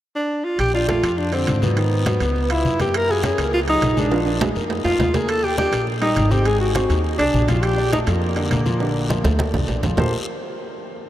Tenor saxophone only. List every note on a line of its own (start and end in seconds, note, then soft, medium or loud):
0.16 0.46 D4 medium
0.45 0.59 F4 medium
0.60 0.73 G4 medium
0.75 0.88 F4 medium
0.89 1.20 F4 medium
1.19 1.33 D4 medium
1.34 1.64 C4 medium
1.63 2.53 B3 medium
2.51 2.80 E4 loud
2.81 2.98 G4 loud
2.96 3.12 A#4 loud
3.11 3.25 G#4 loud
3.25 3.52 G#4 medium
3.54 3.60 F4 medium
3.69 4.00 D#4 loud
3.98 4.59 D4 medium
4.84 5.16 F4 medium
5.14 5.30 G#4 loud
5.29 5.46 A4 loud
5.44 5.58 G4 loud
5.59 5.86 G4 medium
6.02 6.33 D#4 medium
6.32 6.48 G4 loud
6.46 6.60 G#4 loud
6.61 6.74 F#4 medium
6.75 7.02 F#4 medium
7.19 7.50 D4 medium
7.49 7.64 F4 medium
7.62 7.92 G4 loud
7.93 7.99 D#4 medium
8.08 9.65 A#3 medium